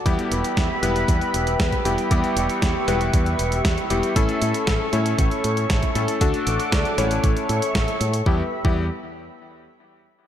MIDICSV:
0, 0, Header, 1, 5, 480
1, 0, Start_track
1, 0, Tempo, 512821
1, 54, Time_signature, 4, 2, 24, 8
1, 9615, End_track
2, 0, Start_track
2, 0, Title_t, "Analog synth pad"
2, 0, Program_c, 0, 89
2, 53, Note_on_c, 0, 67, 80
2, 53, Note_on_c, 0, 83, 92
2, 54, Note_on_c, 0, 71, 74
2, 54, Note_on_c, 0, 76, 78
2, 1955, Note_off_c, 0, 83, 0
2, 1974, Note_on_c, 0, 85, 88
2, 3856, Note_off_c, 0, 67, 0
2, 3857, Note_off_c, 0, 71, 0
2, 3894, Note_on_c, 0, 69, 80
2, 3894, Note_on_c, 0, 73, 72
2, 5777, Note_off_c, 0, 76, 0
2, 5777, Note_off_c, 0, 85, 0
2, 5795, Note_off_c, 0, 73, 0
2, 5814, Note_on_c, 0, 78, 70
2, 5815, Note_on_c, 0, 74, 72
2, 5815, Note_on_c, 0, 86, 81
2, 6765, Note_off_c, 0, 74, 0
2, 6765, Note_off_c, 0, 78, 0
2, 6765, Note_off_c, 0, 86, 0
2, 6774, Note_on_c, 0, 76, 73
2, 6774, Note_on_c, 0, 85, 89
2, 6775, Note_on_c, 0, 73, 71
2, 7697, Note_off_c, 0, 69, 0
2, 7724, Note_off_c, 0, 76, 0
2, 7724, Note_off_c, 0, 85, 0
2, 7725, Note_off_c, 0, 73, 0
2, 7735, Note_on_c, 0, 67, 74
2, 7735, Note_on_c, 0, 71, 65
2, 7735, Note_on_c, 0, 76, 69
2, 7735, Note_on_c, 0, 83, 76
2, 7958, Note_off_c, 0, 67, 0
2, 7958, Note_off_c, 0, 71, 0
2, 7958, Note_off_c, 0, 76, 0
2, 7958, Note_off_c, 0, 83, 0
2, 9615, End_track
3, 0, Start_track
3, 0, Title_t, "Electric grand piano"
3, 0, Program_c, 1, 2
3, 53, Note_on_c, 1, 55, 95
3, 53, Note_on_c, 1, 59, 88
3, 53, Note_on_c, 1, 64, 88
3, 53, Note_on_c, 1, 67, 105
3, 745, Note_off_c, 1, 55, 0
3, 745, Note_off_c, 1, 59, 0
3, 745, Note_off_c, 1, 64, 0
3, 745, Note_off_c, 1, 67, 0
3, 773, Note_on_c, 1, 55, 90
3, 773, Note_on_c, 1, 59, 80
3, 774, Note_on_c, 1, 64, 83
3, 774, Note_on_c, 1, 71, 102
3, 1705, Note_off_c, 1, 55, 0
3, 1705, Note_off_c, 1, 59, 0
3, 1705, Note_off_c, 1, 64, 0
3, 1705, Note_off_c, 1, 71, 0
3, 1733, Note_on_c, 1, 67, 91
3, 1734, Note_on_c, 1, 55, 80
3, 1734, Note_on_c, 1, 59, 74
3, 1734, Note_on_c, 1, 64, 78
3, 1945, Note_off_c, 1, 55, 0
3, 1945, Note_off_c, 1, 59, 0
3, 1945, Note_off_c, 1, 64, 0
3, 1945, Note_off_c, 1, 67, 0
3, 1975, Note_on_c, 1, 55, 98
3, 1975, Note_on_c, 1, 59, 90
3, 1975, Note_on_c, 1, 64, 90
3, 1975, Note_on_c, 1, 67, 103
3, 2666, Note_off_c, 1, 55, 0
3, 2666, Note_off_c, 1, 59, 0
3, 2666, Note_off_c, 1, 64, 0
3, 2666, Note_off_c, 1, 67, 0
3, 2695, Note_on_c, 1, 55, 92
3, 2695, Note_on_c, 1, 59, 87
3, 2695, Note_on_c, 1, 64, 79
3, 2695, Note_on_c, 1, 71, 98
3, 3626, Note_off_c, 1, 55, 0
3, 3626, Note_off_c, 1, 59, 0
3, 3626, Note_off_c, 1, 64, 0
3, 3626, Note_off_c, 1, 71, 0
3, 3653, Note_on_c, 1, 67, 91
3, 3654, Note_on_c, 1, 55, 85
3, 3654, Note_on_c, 1, 59, 72
3, 3654, Note_on_c, 1, 64, 79
3, 3865, Note_off_c, 1, 55, 0
3, 3865, Note_off_c, 1, 59, 0
3, 3865, Note_off_c, 1, 64, 0
3, 3865, Note_off_c, 1, 67, 0
3, 3894, Note_on_c, 1, 57, 93
3, 3894, Note_on_c, 1, 61, 88
3, 3894, Note_on_c, 1, 64, 89
3, 3894, Note_on_c, 1, 69, 110
3, 4585, Note_off_c, 1, 57, 0
3, 4585, Note_off_c, 1, 61, 0
3, 4585, Note_off_c, 1, 64, 0
3, 4585, Note_off_c, 1, 69, 0
3, 4613, Note_on_c, 1, 57, 92
3, 4613, Note_on_c, 1, 61, 82
3, 4613, Note_on_c, 1, 64, 84
3, 4613, Note_on_c, 1, 73, 102
3, 5545, Note_off_c, 1, 57, 0
3, 5545, Note_off_c, 1, 61, 0
3, 5545, Note_off_c, 1, 64, 0
3, 5545, Note_off_c, 1, 73, 0
3, 5573, Note_on_c, 1, 57, 85
3, 5573, Note_on_c, 1, 64, 76
3, 5573, Note_on_c, 1, 69, 87
3, 5574, Note_on_c, 1, 61, 80
3, 5785, Note_off_c, 1, 57, 0
3, 5785, Note_off_c, 1, 61, 0
3, 5785, Note_off_c, 1, 64, 0
3, 5785, Note_off_c, 1, 69, 0
3, 5814, Note_on_c, 1, 57, 97
3, 5814, Note_on_c, 1, 62, 90
3, 5814, Note_on_c, 1, 66, 90
3, 5814, Note_on_c, 1, 69, 110
3, 6505, Note_off_c, 1, 57, 0
3, 6505, Note_off_c, 1, 62, 0
3, 6505, Note_off_c, 1, 66, 0
3, 6505, Note_off_c, 1, 69, 0
3, 6535, Note_on_c, 1, 57, 90
3, 6535, Note_on_c, 1, 61, 82
3, 6535, Note_on_c, 1, 64, 81
3, 6535, Note_on_c, 1, 73, 101
3, 7466, Note_off_c, 1, 57, 0
3, 7466, Note_off_c, 1, 61, 0
3, 7466, Note_off_c, 1, 64, 0
3, 7466, Note_off_c, 1, 73, 0
3, 7733, Note_on_c, 1, 55, 81
3, 7734, Note_on_c, 1, 59, 77
3, 7734, Note_on_c, 1, 64, 76
3, 7734, Note_on_c, 1, 67, 90
3, 7868, Note_off_c, 1, 55, 0
3, 7868, Note_off_c, 1, 59, 0
3, 7868, Note_off_c, 1, 64, 0
3, 7868, Note_off_c, 1, 67, 0
3, 8093, Note_on_c, 1, 55, 86
3, 8093, Note_on_c, 1, 59, 72
3, 8093, Note_on_c, 1, 67, 92
3, 8094, Note_on_c, 1, 64, 78
3, 8272, Note_off_c, 1, 55, 0
3, 8272, Note_off_c, 1, 59, 0
3, 8272, Note_off_c, 1, 67, 0
3, 8273, Note_off_c, 1, 64, 0
3, 9615, End_track
4, 0, Start_track
4, 0, Title_t, "Fingered electric bass"
4, 0, Program_c, 2, 33
4, 53, Note_on_c, 2, 40, 93
4, 148, Note_off_c, 2, 40, 0
4, 293, Note_on_c, 2, 28, 96
4, 388, Note_off_c, 2, 28, 0
4, 533, Note_on_c, 2, 40, 92
4, 628, Note_off_c, 2, 40, 0
4, 772, Note_on_c, 2, 28, 90
4, 961, Note_off_c, 2, 28, 0
4, 1014, Note_on_c, 2, 40, 105
4, 1108, Note_off_c, 2, 40, 0
4, 1254, Note_on_c, 2, 28, 85
4, 1442, Note_off_c, 2, 28, 0
4, 1494, Note_on_c, 2, 40, 91
4, 1588, Note_off_c, 2, 40, 0
4, 1733, Note_on_c, 2, 28, 95
4, 1828, Note_off_c, 2, 28, 0
4, 1974, Note_on_c, 2, 40, 95
4, 2068, Note_off_c, 2, 40, 0
4, 2212, Note_on_c, 2, 28, 101
4, 2307, Note_off_c, 2, 28, 0
4, 2454, Note_on_c, 2, 40, 88
4, 2548, Note_off_c, 2, 40, 0
4, 2693, Note_on_c, 2, 28, 96
4, 2882, Note_off_c, 2, 28, 0
4, 2934, Note_on_c, 2, 40, 94
4, 3123, Note_off_c, 2, 40, 0
4, 3174, Note_on_c, 2, 28, 88
4, 3362, Note_off_c, 2, 28, 0
4, 3414, Note_on_c, 2, 40, 89
4, 3508, Note_off_c, 2, 40, 0
4, 3654, Note_on_c, 2, 28, 98
4, 3748, Note_off_c, 2, 28, 0
4, 3895, Note_on_c, 2, 33, 98
4, 3989, Note_off_c, 2, 33, 0
4, 4135, Note_on_c, 2, 45, 104
4, 4229, Note_off_c, 2, 45, 0
4, 4374, Note_on_c, 2, 33, 99
4, 4468, Note_off_c, 2, 33, 0
4, 4614, Note_on_c, 2, 45, 98
4, 4803, Note_off_c, 2, 45, 0
4, 4854, Note_on_c, 2, 33, 101
4, 4948, Note_off_c, 2, 33, 0
4, 5095, Note_on_c, 2, 45, 83
4, 5283, Note_off_c, 2, 45, 0
4, 5334, Note_on_c, 2, 33, 90
4, 5428, Note_off_c, 2, 33, 0
4, 5573, Note_on_c, 2, 45, 92
4, 5668, Note_off_c, 2, 45, 0
4, 5814, Note_on_c, 2, 38, 96
4, 5908, Note_off_c, 2, 38, 0
4, 6053, Note_on_c, 2, 33, 103
4, 6148, Note_off_c, 2, 33, 0
4, 6293, Note_on_c, 2, 38, 94
4, 6388, Note_off_c, 2, 38, 0
4, 6533, Note_on_c, 2, 33, 97
4, 6722, Note_off_c, 2, 33, 0
4, 6774, Note_on_c, 2, 33, 90
4, 6868, Note_off_c, 2, 33, 0
4, 7014, Note_on_c, 2, 45, 84
4, 7108, Note_off_c, 2, 45, 0
4, 7254, Note_on_c, 2, 33, 94
4, 7348, Note_off_c, 2, 33, 0
4, 7494, Note_on_c, 2, 45, 98
4, 7683, Note_off_c, 2, 45, 0
4, 7733, Note_on_c, 2, 40, 89
4, 7868, Note_off_c, 2, 40, 0
4, 8093, Note_on_c, 2, 40, 96
4, 8317, Note_off_c, 2, 40, 0
4, 9615, End_track
5, 0, Start_track
5, 0, Title_t, "Drums"
5, 54, Note_on_c, 9, 36, 112
5, 56, Note_on_c, 9, 42, 76
5, 147, Note_off_c, 9, 36, 0
5, 150, Note_off_c, 9, 42, 0
5, 176, Note_on_c, 9, 42, 34
5, 270, Note_off_c, 9, 42, 0
5, 295, Note_on_c, 9, 42, 75
5, 389, Note_off_c, 9, 42, 0
5, 416, Note_on_c, 9, 42, 51
5, 510, Note_off_c, 9, 42, 0
5, 534, Note_on_c, 9, 36, 119
5, 536, Note_on_c, 9, 38, 112
5, 536, Note_on_c, 9, 42, 74
5, 627, Note_off_c, 9, 36, 0
5, 629, Note_off_c, 9, 38, 0
5, 629, Note_off_c, 9, 42, 0
5, 776, Note_on_c, 9, 42, 79
5, 870, Note_off_c, 9, 42, 0
5, 897, Note_on_c, 9, 42, 50
5, 990, Note_off_c, 9, 42, 0
5, 1014, Note_on_c, 9, 36, 112
5, 1016, Note_on_c, 9, 42, 77
5, 1108, Note_off_c, 9, 36, 0
5, 1110, Note_off_c, 9, 42, 0
5, 1136, Note_on_c, 9, 42, 34
5, 1230, Note_off_c, 9, 42, 0
5, 1255, Note_on_c, 9, 42, 77
5, 1349, Note_off_c, 9, 42, 0
5, 1375, Note_on_c, 9, 42, 49
5, 1469, Note_off_c, 9, 42, 0
5, 1494, Note_on_c, 9, 36, 122
5, 1495, Note_on_c, 9, 38, 116
5, 1495, Note_on_c, 9, 42, 74
5, 1588, Note_off_c, 9, 36, 0
5, 1589, Note_off_c, 9, 38, 0
5, 1589, Note_off_c, 9, 42, 0
5, 1614, Note_on_c, 9, 36, 62
5, 1615, Note_on_c, 9, 42, 36
5, 1708, Note_off_c, 9, 36, 0
5, 1708, Note_off_c, 9, 42, 0
5, 1735, Note_on_c, 9, 42, 76
5, 1828, Note_off_c, 9, 42, 0
5, 1854, Note_on_c, 9, 42, 48
5, 1948, Note_off_c, 9, 42, 0
5, 1974, Note_on_c, 9, 36, 104
5, 1974, Note_on_c, 9, 42, 74
5, 2068, Note_off_c, 9, 36, 0
5, 2068, Note_off_c, 9, 42, 0
5, 2094, Note_on_c, 9, 42, 33
5, 2188, Note_off_c, 9, 42, 0
5, 2215, Note_on_c, 9, 42, 76
5, 2308, Note_off_c, 9, 42, 0
5, 2335, Note_on_c, 9, 42, 49
5, 2429, Note_off_c, 9, 42, 0
5, 2454, Note_on_c, 9, 36, 114
5, 2455, Note_on_c, 9, 38, 116
5, 2455, Note_on_c, 9, 42, 75
5, 2548, Note_off_c, 9, 36, 0
5, 2548, Note_off_c, 9, 38, 0
5, 2548, Note_off_c, 9, 42, 0
5, 2695, Note_on_c, 9, 38, 37
5, 2695, Note_on_c, 9, 42, 76
5, 2788, Note_off_c, 9, 38, 0
5, 2788, Note_off_c, 9, 42, 0
5, 2815, Note_on_c, 9, 42, 49
5, 2909, Note_off_c, 9, 42, 0
5, 2934, Note_on_c, 9, 36, 114
5, 2934, Note_on_c, 9, 42, 74
5, 3028, Note_off_c, 9, 36, 0
5, 3028, Note_off_c, 9, 42, 0
5, 3054, Note_on_c, 9, 42, 35
5, 3148, Note_off_c, 9, 42, 0
5, 3174, Note_on_c, 9, 42, 73
5, 3268, Note_off_c, 9, 42, 0
5, 3294, Note_on_c, 9, 42, 47
5, 3388, Note_off_c, 9, 42, 0
5, 3414, Note_on_c, 9, 36, 113
5, 3414, Note_on_c, 9, 38, 111
5, 3414, Note_on_c, 9, 42, 77
5, 3508, Note_off_c, 9, 36, 0
5, 3508, Note_off_c, 9, 38, 0
5, 3508, Note_off_c, 9, 42, 0
5, 3534, Note_on_c, 9, 42, 38
5, 3628, Note_off_c, 9, 42, 0
5, 3653, Note_on_c, 9, 42, 77
5, 3747, Note_off_c, 9, 42, 0
5, 3774, Note_on_c, 9, 42, 50
5, 3867, Note_off_c, 9, 42, 0
5, 3894, Note_on_c, 9, 36, 107
5, 3894, Note_on_c, 9, 42, 80
5, 3987, Note_off_c, 9, 42, 0
5, 3988, Note_off_c, 9, 36, 0
5, 4013, Note_on_c, 9, 42, 36
5, 4107, Note_off_c, 9, 42, 0
5, 4133, Note_on_c, 9, 42, 74
5, 4227, Note_off_c, 9, 42, 0
5, 4253, Note_on_c, 9, 42, 50
5, 4347, Note_off_c, 9, 42, 0
5, 4373, Note_on_c, 9, 38, 110
5, 4373, Note_on_c, 9, 42, 76
5, 4374, Note_on_c, 9, 36, 108
5, 4466, Note_off_c, 9, 38, 0
5, 4466, Note_off_c, 9, 42, 0
5, 4468, Note_off_c, 9, 36, 0
5, 4613, Note_on_c, 9, 42, 82
5, 4706, Note_off_c, 9, 42, 0
5, 4734, Note_on_c, 9, 42, 51
5, 4827, Note_off_c, 9, 42, 0
5, 4853, Note_on_c, 9, 42, 79
5, 4854, Note_on_c, 9, 36, 114
5, 4947, Note_off_c, 9, 42, 0
5, 4948, Note_off_c, 9, 36, 0
5, 4974, Note_on_c, 9, 42, 35
5, 5067, Note_off_c, 9, 42, 0
5, 5093, Note_on_c, 9, 42, 73
5, 5187, Note_off_c, 9, 42, 0
5, 5214, Note_on_c, 9, 42, 48
5, 5308, Note_off_c, 9, 42, 0
5, 5333, Note_on_c, 9, 38, 113
5, 5333, Note_on_c, 9, 42, 78
5, 5334, Note_on_c, 9, 36, 117
5, 5427, Note_off_c, 9, 38, 0
5, 5427, Note_off_c, 9, 42, 0
5, 5428, Note_off_c, 9, 36, 0
5, 5453, Note_on_c, 9, 42, 38
5, 5454, Note_on_c, 9, 36, 57
5, 5546, Note_off_c, 9, 42, 0
5, 5548, Note_off_c, 9, 36, 0
5, 5573, Note_on_c, 9, 42, 81
5, 5667, Note_off_c, 9, 42, 0
5, 5692, Note_on_c, 9, 42, 52
5, 5786, Note_off_c, 9, 42, 0
5, 5813, Note_on_c, 9, 42, 80
5, 5814, Note_on_c, 9, 36, 113
5, 5906, Note_off_c, 9, 42, 0
5, 5907, Note_off_c, 9, 36, 0
5, 5933, Note_on_c, 9, 42, 37
5, 6027, Note_off_c, 9, 42, 0
5, 6053, Note_on_c, 9, 42, 77
5, 6147, Note_off_c, 9, 42, 0
5, 6174, Note_on_c, 9, 42, 54
5, 6267, Note_off_c, 9, 42, 0
5, 6293, Note_on_c, 9, 38, 115
5, 6293, Note_on_c, 9, 42, 79
5, 6294, Note_on_c, 9, 36, 116
5, 6387, Note_off_c, 9, 36, 0
5, 6387, Note_off_c, 9, 38, 0
5, 6387, Note_off_c, 9, 42, 0
5, 6414, Note_on_c, 9, 42, 36
5, 6507, Note_off_c, 9, 42, 0
5, 6534, Note_on_c, 9, 38, 37
5, 6534, Note_on_c, 9, 42, 78
5, 6627, Note_off_c, 9, 38, 0
5, 6627, Note_off_c, 9, 42, 0
5, 6653, Note_on_c, 9, 42, 52
5, 6747, Note_off_c, 9, 42, 0
5, 6773, Note_on_c, 9, 42, 80
5, 6774, Note_on_c, 9, 36, 109
5, 6867, Note_off_c, 9, 36, 0
5, 6867, Note_off_c, 9, 42, 0
5, 6894, Note_on_c, 9, 42, 38
5, 6988, Note_off_c, 9, 42, 0
5, 7014, Note_on_c, 9, 42, 77
5, 7108, Note_off_c, 9, 42, 0
5, 7135, Note_on_c, 9, 42, 53
5, 7228, Note_off_c, 9, 42, 0
5, 7253, Note_on_c, 9, 36, 116
5, 7255, Note_on_c, 9, 38, 118
5, 7255, Note_on_c, 9, 42, 76
5, 7347, Note_off_c, 9, 36, 0
5, 7348, Note_off_c, 9, 38, 0
5, 7348, Note_off_c, 9, 42, 0
5, 7375, Note_on_c, 9, 42, 39
5, 7469, Note_off_c, 9, 42, 0
5, 7495, Note_on_c, 9, 42, 84
5, 7588, Note_off_c, 9, 42, 0
5, 7614, Note_on_c, 9, 42, 54
5, 7708, Note_off_c, 9, 42, 0
5, 7734, Note_on_c, 9, 36, 109
5, 7827, Note_off_c, 9, 36, 0
5, 8094, Note_on_c, 9, 36, 110
5, 8187, Note_off_c, 9, 36, 0
5, 9615, End_track
0, 0, End_of_file